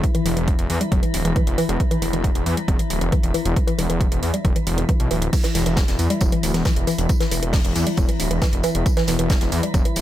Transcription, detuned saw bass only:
0.26 E1
0.37 E1
0.59 E1
0.70 E2
0.92 E1
1.14 D1
1.25 E1
1.47 E1
1.69 E1
2.02 E1
2.13 E1
2.35 E1
2.46 E2
2.68 E1
2.90 D1
3.01 E1
3.23 E1
3.45 E1
3.78 E1
3.89 E1
4.11 E1
4.22 E2
4.45 E1
4.67 E1
5.00 B1
5.11 D1
5.55 E1
5.66 E1
5.88 E1
5.99 E2
6.21 E1
6.43 D1
6.54 E1
6.76 E1
6.98 E1
7.31 E1
7.43 E1
7.65 E1
7.76 E2
7.98 E1
8.20 D1
8.31 E1
8.53 E1
8.75 E1
9.08 E1
9.19 E1
9.41 E1
9.52 E2
9.74 E1
9.96 D1

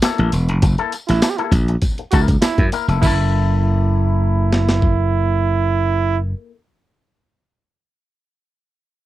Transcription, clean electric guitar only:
0.04 A#3 E4 A4
0.33 muted clean electric guitar stroke
0.49 muted clean electric guitar stroke
0.63 muted clean electric guitar stroke
0.79 A#3 E4 A4
0.94 muted clean electric guitar stroke
1.09 muted clean electric guitar stroke
1.23 muted clean electric guitar stroke
1.39 A#3 E4 A4
1.53 muted clean electric guitar stroke
1.69 muted clean electric guitar stroke
1.99 muted clean electric guitar stroke
2.13 A#3 E4 A#4
2.42 muted clean electric guitar stroke
2.58 muted clean electric guitar stroke
2.73 A#3 E4 A#4
2.89 A#3 E4 A4
3.01 A#3 E4
3.06 A4

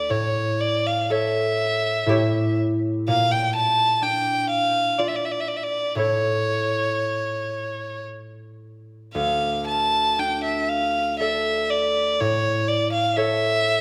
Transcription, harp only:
Already playing: D2 D4 F4 A4 D5
0.10 A2
1.10 A4 C#5
2.06 A2 E4 G4 C#5
3.08 A#2
4.02 D4
4.99 F4 D5
5.95 A2 E4 A4 C#5
9.15 D2
10.18 D4
11.20 A4 D5
12.20 A2
13.17 A4 C#5

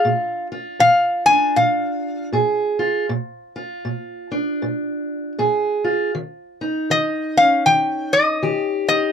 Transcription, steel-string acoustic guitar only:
Already playing: D4 F4
0.05 A#2
0.52 F4
0.79 A#2
1.28 D4
1.56 A#2
2.33 A#2 G#4
2.79 F4
3.09 A#2
3.56 F4
3.85 A#2
4.31 D4
4.62 A#2
5.39 A#2 G#4
5.84 F4
6.15 D#3
6.61 D#4
6.90 D#3
7.37 C#4
7.66 D#3
8.43 D#3 G4
8.90 D#4

